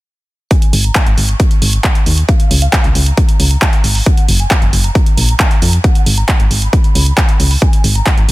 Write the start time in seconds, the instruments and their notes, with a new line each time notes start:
0.51 supersaw synth G#5, kick, closed hi-hat
0.62 closed hi-hat
0.73 fm bass G#1, open hi-hat
0.84 supersaw synth A#5, closed hi-hat
0.95 kick, clap, closed hi-hat
1.06 fm bass G#1, closed hi-hat
1.18 fm bass G#1, open hi-hat
1.29 supersaw synth C#6, closed hi-hat
1.40 kick, closed hi-hat
1.51 closed hi-hat
1.62 fm bass G#1, open hi-hat
1.73 closed hi-hat
1.84 kick, clap, closed hi-hat
1.95 closed hi-hat
2.06 fm bass D#2, open hi-hat
2.18 closed hi-hat
2.29 supersaw synth F5, kick, closed hi-hat
2.40 closed hi-hat
2.51 fm bass C#2, open hi-hat
2.62 supersaw synth F5, closed hi-hat
2.73 kick, clap, closed hi-hat
2.84 fm bass C#2, closed hi-hat
2.95 fm bass C#2, open hi-hat
3.06 supersaw synth A#5, closed hi-hat
3.17 kick, closed hi-hat
3.29 closed hi-hat
3.40 fm bass C#2, open hi-hat
3.51 closed hi-hat
3.62 kick, clap, closed hi-hat
3.73 closed hi-hat
3.84 fm bass G#1, open hi-hat
3.95 open hi-hat
4.06 supersaw synth F#5, kick, closed hi-hat
4.17 closed hi-hat
4.29 fm bass F#1, open hi-hat
4.40 supersaw synth G#5, closed hi-hat
4.51 kick, clap, closed hi-hat
4.62 fm bass F#1, closed hi-hat
4.73 fm bass F#1, open hi-hat
4.84 supersaw synth A#5, closed hi-hat
4.95 kick, closed hi-hat
5.06 closed hi-hat
5.17 fm bass A#1, open hi-hat
5.29 closed hi-hat
5.40 kick, clap, closed hi-hat
5.51 closed hi-hat
5.62 fm bass F2, open hi-hat
5.73 closed hi-hat
5.84 supersaw synth F#5, kick, closed hi-hat
5.95 closed hi-hat
6.06 fm bass G#1, open hi-hat
6.17 supersaw synth A#5, closed hi-hat
6.29 kick, clap, closed hi-hat
6.40 fm bass G#1, closed hi-hat
6.51 fm bass G#1, open hi-hat
6.62 supersaw synth B5, closed hi-hat
6.73 kick, closed hi-hat
6.84 closed hi-hat
6.95 fm bass C#2, open hi-hat
7.06 closed hi-hat
7.17 kick, clap, closed hi-hat
7.29 closed hi-hat
7.40 fm bass C#2, open hi-hat
7.51 open hi-hat
7.62 supersaw synth G#5, kick, closed hi-hat
7.73 closed hi-hat
7.84 fm bass G#1, open hi-hat
7.95 supersaw synth A#5, closed hi-hat
8.06 kick, clap, closed hi-hat
8.18 fm bass G#1, closed hi-hat
8.29 fm bass G#1, open hi-hat